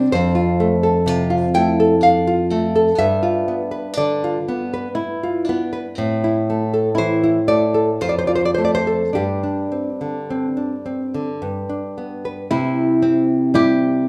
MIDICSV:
0, 0, Header, 1, 3, 480
1, 0, Start_track
1, 0, Tempo, 947867
1, 69, Time_signature, 3, 2, 24, 8
1, 1508, Tempo, 996678
1, 3428, Tempo, 1041667
1, 3908, Tempo, 1132075
1, 5348, Tempo, 1073345
1, 6548, End_track
2, 0, Start_track
2, 0, Title_t, "Nylon-string guitar"
2, 0, Program_c, 0, 24
2, 0, Note_on_c, 0, 48, 66
2, 0, Note_on_c, 0, 60, 59
2, 52, Note_off_c, 0, 48, 0
2, 63, Note_on_c, 0, 72, 93
2, 66, Note_on_c, 0, 41, 79
2, 68, Note_off_c, 0, 60, 0
2, 178, Note_on_c, 0, 65, 55
2, 304, Note_on_c, 0, 57, 57
2, 376, Note_off_c, 0, 65, 0
2, 422, Note_on_c, 0, 69, 59
2, 499, Note_off_c, 0, 57, 0
2, 537, Note_on_c, 0, 48, 62
2, 617, Note_off_c, 0, 69, 0
2, 659, Note_on_c, 0, 65, 57
2, 734, Note_off_c, 0, 48, 0
2, 765, Note_off_c, 0, 72, 0
2, 784, Note_on_c, 0, 79, 96
2, 787, Note_on_c, 0, 57, 53
2, 856, Note_off_c, 0, 65, 0
2, 911, Note_on_c, 0, 69, 56
2, 980, Note_off_c, 0, 57, 0
2, 1017, Note_off_c, 0, 79, 0
2, 1028, Note_on_c, 0, 77, 83
2, 1152, Note_on_c, 0, 65, 59
2, 1272, Note_on_c, 0, 57, 60
2, 1293, Note_off_c, 0, 69, 0
2, 1341, Note_off_c, 0, 65, 0
2, 1396, Note_on_c, 0, 69, 63
2, 1462, Note_off_c, 0, 57, 0
2, 1486, Note_off_c, 0, 41, 0
2, 1488, Note_off_c, 0, 77, 0
2, 1511, Note_off_c, 0, 69, 0
2, 1511, Note_on_c, 0, 43, 69
2, 1512, Note_on_c, 0, 76, 98
2, 1628, Note_on_c, 0, 65, 55
2, 1750, Note_on_c, 0, 59, 55
2, 1813, Note_off_c, 0, 65, 0
2, 1862, Note_on_c, 0, 71, 53
2, 1936, Note_off_c, 0, 59, 0
2, 1962, Note_off_c, 0, 76, 0
2, 1986, Note_off_c, 0, 71, 0
2, 1988, Note_on_c, 0, 74, 83
2, 1991, Note_on_c, 0, 50, 59
2, 2116, Note_on_c, 0, 65, 56
2, 2180, Note_off_c, 0, 50, 0
2, 2234, Note_on_c, 0, 59, 52
2, 2303, Note_off_c, 0, 65, 0
2, 2355, Note_on_c, 0, 71, 60
2, 2421, Note_off_c, 0, 59, 0
2, 2595, Note_on_c, 0, 65, 51
2, 2685, Note_off_c, 0, 74, 0
2, 2716, Note_off_c, 0, 71, 0
2, 2718, Note_on_c, 0, 59, 58
2, 2778, Note_off_c, 0, 65, 0
2, 2832, Note_on_c, 0, 71, 56
2, 2900, Note_off_c, 0, 59, 0
2, 2923, Note_off_c, 0, 43, 0
2, 2946, Note_off_c, 0, 71, 0
2, 2954, Note_on_c, 0, 45, 71
2, 3079, Note_on_c, 0, 64, 49
2, 3203, Note_on_c, 0, 57, 47
2, 3266, Note_off_c, 0, 64, 0
2, 3318, Note_on_c, 0, 69, 48
2, 3389, Note_off_c, 0, 57, 0
2, 3435, Note_on_c, 0, 52, 54
2, 3437, Note_on_c, 0, 72, 83
2, 3504, Note_off_c, 0, 69, 0
2, 3553, Note_on_c, 0, 64, 49
2, 3620, Note_off_c, 0, 52, 0
2, 3659, Note_off_c, 0, 72, 0
2, 3665, Note_on_c, 0, 57, 47
2, 3666, Note_on_c, 0, 74, 80
2, 3740, Note_off_c, 0, 64, 0
2, 3787, Note_on_c, 0, 69, 46
2, 3859, Note_off_c, 0, 57, 0
2, 3896, Note_off_c, 0, 45, 0
2, 3899, Note_off_c, 0, 74, 0
2, 3909, Note_off_c, 0, 69, 0
2, 3910, Note_on_c, 0, 41, 62
2, 3913, Note_on_c, 0, 72, 68
2, 3944, Note_on_c, 0, 74, 65
2, 3947, Note_off_c, 0, 72, 0
2, 3981, Note_off_c, 0, 74, 0
2, 3984, Note_on_c, 0, 72, 68
2, 4019, Note_off_c, 0, 72, 0
2, 4021, Note_on_c, 0, 74, 62
2, 4027, Note_on_c, 0, 65, 46
2, 4054, Note_off_c, 0, 74, 0
2, 4056, Note_on_c, 0, 72, 64
2, 4094, Note_off_c, 0, 72, 0
2, 4098, Note_on_c, 0, 74, 61
2, 4135, Note_off_c, 0, 74, 0
2, 4137, Note_on_c, 0, 72, 62
2, 4152, Note_on_c, 0, 57, 46
2, 4173, Note_off_c, 0, 72, 0
2, 4180, Note_on_c, 0, 74, 62
2, 4214, Note_off_c, 0, 74, 0
2, 4215, Note_off_c, 0, 65, 0
2, 4222, Note_on_c, 0, 72, 78
2, 4275, Note_on_c, 0, 69, 49
2, 4340, Note_off_c, 0, 57, 0
2, 4370, Note_off_c, 0, 41, 0
2, 4383, Note_off_c, 0, 72, 0
2, 4390, Note_off_c, 0, 69, 0
2, 4393, Note_on_c, 0, 67, 60
2, 4395, Note_on_c, 0, 43, 59
2, 4514, Note_on_c, 0, 62, 44
2, 4633, Note_on_c, 0, 60, 42
2, 4706, Note_off_c, 0, 62, 0
2, 4757, Note_on_c, 0, 50, 40
2, 4827, Note_off_c, 0, 60, 0
2, 4883, Note_on_c, 0, 60, 46
2, 4949, Note_off_c, 0, 50, 0
2, 4995, Note_on_c, 0, 62, 46
2, 5071, Note_off_c, 0, 60, 0
2, 5117, Note_on_c, 0, 60, 43
2, 5184, Note_off_c, 0, 62, 0
2, 5239, Note_on_c, 0, 50, 43
2, 5302, Note_off_c, 0, 60, 0
2, 5335, Note_off_c, 0, 67, 0
2, 5336, Note_off_c, 0, 43, 0
2, 5351, Note_off_c, 0, 50, 0
2, 5355, Note_on_c, 0, 43, 57
2, 5479, Note_on_c, 0, 62, 40
2, 5605, Note_on_c, 0, 59, 44
2, 5674, Note_off_c, 0, 62, 0
2, 5728, Note_on_c, 0, 71, 49
2, 5795, Note_off_c, 0, 59, 0
2, 5826, Note_off_c, 0, 43, 0
2, 5841, Note_off_c, 0, 71, 0
2, 5843, Note_on_c, 0, 48, 77
2, 6073, Note_on_c, 0, 60, 60
2, 6304, Note_on_c, 0, 55, 62
2, 6307, Note_on_c, 0, 64, 66
2, 6449, Note_off_c, 0, 60, 0
2, 6530, Note_off_c, 0, 55, 0
2, 6531, Note_off_c, 0, 64, 0
2, 6548, Note_off_c, 0, 48, 0
2, 6548, End_track
3, 0, Start_track
3, 0, Title_t, "Nylon-string guitar"
3, 0, Program_c, 1, 24
3, 0, Note_on_c, 1, 62, 69
3, 76, Note_off_c, 1, 62, 0
3, 76, Note_on_c, 1, 60, 75
3, 544, Note_off_c, 1, 60, 0
3, 544, Note_on_c, 1, 65, 77
3, 780, Note_off_c, 1, 65, 0
3, 780, Note_on_c, 1, 64, 71
3, 1016, Note_off_c, 1, 64, 0
3, 1016, Note_on_c, 1, 62, 72
3, 1267, Note_off_c, 1, 62, 0
3, 1267, Note_on_c, 1, 60, 74
3, 1494, Note_off_c, 1, 60, 0
3, 1494, Note_on_c, 1, 59, 69
3, 1969, Note_off_c, 1, 59, 0
3, 1969, Note_on_c, 1, 62, 70
3, 2455, Note_off_c, 1, 62, 0
3, 2457, Note_on_c, 1, 64, 72
3, 2696, Note_off_c, 1, 64, 0
3, 2696, Note_on_c, 1, 62, 67
3, 2939, Note_off_c, 1, 62, 0
3, 2939, Note_on_c, 1, 60, 68
3, 3418, Note_off_c, 1, 60, 0
3, 3420, Note_on_c, 1, 64, 60
3, 3909, Note_off_c, 1, 64, 0
3, 3909, Note_on_c, 1, 65, 60
3, 4383, Note_off_c, 1, 65, 0
3, 4385, Note_on_c, 1, 62, 53
3, 5578, Note_off_c, 1, 62, 0
3, 5841, Note_on_c, 1, 64, 95
3, 6287, Note_off_c, 1, 64, 0
3, 6309, Note_on_c, 1, 67, 97
3, 6548, Note_off_c, 1, 67, 0
3, 6548, End_track
0, 0, End_of_file